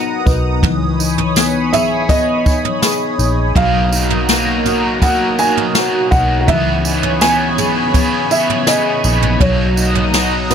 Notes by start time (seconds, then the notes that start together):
Already playing: B1 F#3 B3 D#4 F#4 A#4 F#5 A#5 D#6
0.25 B1 D#4 B4, kick, tambourine
0.62 C#2 E3 C#5 G#5 B5, kick, floor tom
0.99 D#4, tambourine
1.18 floor tom
1.36 B3, snare, tambourine
1.72 G#4 E5, floor tom, tambourine
2.09 B3 D#5, kick, floor tom, tambourine
2.45 D#4, kick, tambourine
2.65 floor tom
2.82 G#4, snare, tambourine
3.18 A#1 D#4, tambourine
3.55 B1 B2 F#3 A#3 D#4 F#4 A#4 F5 A#5, kick, floor tom
3.92 D#4, tambourine
4.10 floor tom
4.28 B2 F#3 A#3 D#4, snare, tambourine
4.65 F#4, floor tom, tambourine
5.00 B2 F#3 A#3 F#5, kick, floor tom, tambourine
5.05 A#3 D#4
5.39 D#4 G#5, tambourine
5.57 floor tom
5.75 F#4, snare, tambourine
6.11 B1 D#4 F#5, kick, tambourine
6.41 F#5
6.47 C#2 C#3 E3 C#5 E5 G#5 B5, kick, floor tom
6.51 B3
6.85 D#4, tambourine
7.03 floor tom
7.21 B3 G#5, snare, tambourine
7.58 G#4, floor tom, tambourine
7.93 C#3 E3 B3, kick, floor tom, tambourine
7.98 B3
8.31 E5, tambourine
8.50 floor tom
8.67 G#4 D#5, snare, tambourine
9.04 A#1 D#4, tambourine
9.22 floor tom
9.40 B1 B2 F#3 A#3 D#4 C#5 D#5 F#5 A#5 D#6, kick, floor tom
9.77 D#4, tambourine
9.95 floor tom
10.13 B2 F#3 D#4, snare, tambourine
10.50 F#4 B4, floor tom, tambourine